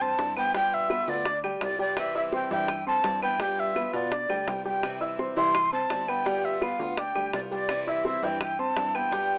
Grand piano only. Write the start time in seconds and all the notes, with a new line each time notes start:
0.01 C4 C5 C6
0.37 B3 B4 B5
0.54 G3 G4 G5
0.90 B3 B4 B5
1.26 D4 D5 D6
1.44 G3 G4 G5
1.79 G3 G4 G5
2.15 E4 E5 E6
2.33 C4 C5 C6
2.51 E3 E4 E5
2.86 C4 C5 C6
3.22 B3 B4 B5
3.40 G3 G4 G5
3.76 B3 B4 B5
4.11 D4 D5 D6
4.29 G3 G4 G5
4.65 G3 G4 G5
5.01 E4 E5 E6
5.19 C4 C5 C6
5.36 E3 E4 E5
5.72 C4 C5 C6
6.08 B3 B4 B5
6.26 G3 G4 G5
6.62 B3 B4 B5
6.98 D4 D5 D6
7.15 G3 G4 G5
7.51 G3 G4 G5
7.87 E4 E5 E6
8.05 C4 C5 C6
8.23 E3 E4 E5
8.59 C4 C5 C6
8.94 B3 B4 B5
9.13 G3 G4 G5